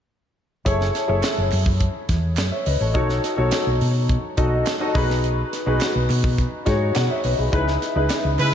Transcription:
0.65 fingered electric bass F#1, grand piano E4 G#4 A4 C#5, kick, closed hi-hat
0.81 snare
0.95 snare, closed hi-hat
1.08 fingered electric bass F#1, grand piano E4 G#4 A4 C#5
1.23 snare, clap, closed hi-hat
1.38 fingered electric bass F#1
1.52 fingered electric bass F#2, clap, open hi-hat
1.66 kick
1.80 kick, closed hi-hat
2.09 fingered electric bass E2, kick, snare, closed hi-hat
2.37 fingered electric bass F#2, snare, clap, closed hi-hat
2.52 grand piano C#5 E5
2.66 fingered electric bass C#2, grand piano B4 D#5, open hi-hat
2.80 fingered electric bass A1, grand piano A4 C#5
2.94 fingered electric bass B1, grand piano D#4 F#4 A4 C#5, kick, closed hi-hat
3.09 snare
3.24 snare, closed hi-hat
3.37 fingered electric bass B1, grand piano D#4 F#4 A4 C#5
3.51 snare, clap, closed hi-hat
3.67 fingered electric bass B1
3.81 fingered electric bass B2, open hi-hat
4.09 kick, closed hi-hat
4.37 fingered electric bass B1, grand piano D#4 F#4 A4 D#5, kick, closed hi-hat
4.66 snare, clap, closed hi-hat
4.80 grand piano D#4 F#4 A4 D#5
4.94 fingered electric bass B1, grand piano D#4 F#4 G#4 B4, kick, open hi-hat
5.10 snare
5.24 closed hi-hat
5.53 snare, closed hi-hat
5.66 fingered electric bass B1, grand piano D#4 F#4 G#4 B4
5.81 snare, clap, closed hi-hat
5.96 fingered electric bass B1
6.10 fingered electric bass B2, clap, open hi-hat
6.24 kick
6.38 kick, closed hi-hat
6.66 fingered electric bass G#2, grand piano D#4 F#4 G#4 C#5, kick, snare, closed hi-hat
6.95 fingered electric bass B2, grand piano D#5 F#5, snare, clap, closed hi-hat
7.10 grand piano C#5 E5
7.24 fingered electric bass B1, grand piano B4 D#5, open hi-hat
7.38 fingered electric bass B1, grand piano G#4 B4
7.52 fingered electric bass C#2, horn section G#3 E4 B4, grand piano D#4 E4 G#4 B4, kick, closed hi-hat
7.68 snare
7.82 snare, closed hi-hat
7.95 fingered electric bass C#2, grand piano D#4 E4 G#4 B4
8.09 snare, clap, closed hi-hat
8.25 fingered electric bass C#2
8.38 fingered electric bass C#3, horn section G#3 E4 B4, clap, open hi-hat

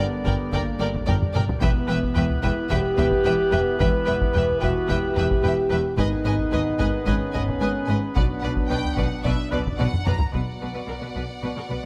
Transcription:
Already playing: trombone section D3 G3, french horn section B3, woodwind section D4 G4 A#4 D5
0.25 double bass section G1, cello section G2, viola section A#4, violin section D5 G5, taiko
0.52 double bass section G1, cello section G2, french horn section A#3, viola section A#4, violin section D5 G5, taiko
0.79 double bass section G1, cello section G2, viola section A#4, violin section D5 G5
0.95 taiko
1.06 double bass section G1, cello section G2, viola section A#4, violin section D5 G5, taiko low-mid
1.22 taiko low-mid
1.34 double bass section G1, cello section G2, viola section A#4, violin section D5 G5, taiko mid
1.49 taiko low
1.60 double bass section E1, cello section E2, trombone section E3 B3, french horn section B3, woodwind section B3 E4 G4 B4, viola section B4, violin section E5 G5, taiko
1.88 double bass section E1, cello section E2, viola section B4, violin section E5 G5
2.03 taiko
2.15 double bass section E1, cello section E2, viola section B4, violin section E5 G5, taiko low
2.30 taiko low
2.43 double bass section E1, cello section E2, french horn section E4, viola section B4, violin section E5 G5, taiko
2.69 double bass section E1, cello section E2, french horn section G4, viola section B4, violin section E5 G5, taiko
2.97 double bass section E1, cello section E2, viola section B4, violin section E5 G5, taiko low
3.11 taiko
3.25 double bass section E1, cello section E2, viola section B4, violin section E5 G5
3.52 double bass section E1, cello section E2, viola section B4, violin section E5 G5
3.79 double bass section E1, cello section E2, french horn section B4, viola section B4, violin section E5 G5, taiko
4.06 double bass section E1, cello section E2, viola section B4, violin section E5 G5
4.21 taiko
4.34 double bass section E1, cello section E2, viola section B4, violin section E5 G5, taiko low
4.49 taiko low
4.60 double bass section E1, cello section E2, french horn section F#4, viola section B4, violin section E5 G5, taiko
4.88 cello section E2, french horn section G4, viola section B4, violin section E5 G5, taiko
4.92 double bass section E1
5.15 double bass section E1, cello section E2, viola section B4, violin section E5 G5, taiko low
5.31 taiko
5.43 double bass section E1, cello section E2, viola section B4, violin section G5
5.47 violin section E5
5.69 double bass section E1, cello section E2, viola section B4, violin section E5 G5
5.97 double bass section G#1, cello section G#2, trombone section D#3 B3, woodwind section B3 D#4 G#4 B4, french horn section D#4, viola section B4, violin section D#5 G#5, taiko
6.25 double bass section G#1, cello section G#2, viola section B4, violin section D#5 G#5
6.39 taiko
6.52 double bass section G#1, cello section G#2, viola section B4, violin section D#5 G#5, taiko low
6.67 taiko low
6.78 double bass section G#1, cello section G#2, viola section B4, violin section D#5 G#5, taiko
7.06 double bass section G#1, cello section G#2, french horn section C#4, viola section B4, violin section D#5 G#5, taiko
7.33 double bass section G#1, cello section G#2, viola section B4, violin section D#5 G#5, taiko low
7.49 taiko
7.60 double bass section G#1, cello section G#2, viola section B4, violin section D#5 G#5
7.86 cello section G#2, viola section B4, violin section D#5 G#5
7.90 double bass section G#1
8.14 double bass section B1, cello section B2, trombone section F#3 D4, french horn section B3, woodwind section D4 F#4, viola section B4, violin section D5 F#5, taiko
8.40 double bass section B1, cello section B2, viola section B4, violin section D5 F#5
8.57 taiko
8.67 double bass section B1, cello section B2, viola section B4, violin section D5 G5, taiko low
8.84 taiko low
8.96 double bass section B1, cello section B2, viola section B4, violin section D5 F#5, taiko
9.24 double bass section B1, cello section B2, viola section B4, violin section D5 E5, taiko
9.51 double bass section B1, cello section B2, viola section B4, violin section D5, taiko low
9.66 taiko
9.78 double bass section B1, cello section B2, viola section B4, violin section D5 F#5, taiko mid
9.94 taiko low-mid
10.06 double bass section B1, cello section B2, viola section B4, violin section D5 A#5, taiko low-mid
10.20 taiko low
10.32 double bass section B1, cello section B2, timpani B2, trombone section B2 B3, french horn section D4 F#4, viola section B4, violin section D5 F#5, taiko
10.61 double bass section B1, cello section B2, viola section B4
10.74 cello section B2, viola section B4
10.87 double bass section B1, cello section B2, viola section A#4
11.01 cello section B2, viola section B4
11.15 double bass section B1, cello section B2, viola section B4
11.43 double bass section B1, cello section B2, viola section B4
11.56 cello section B2, viola section A#4
11.70 double bass section B1, cello section B2, viola section B4

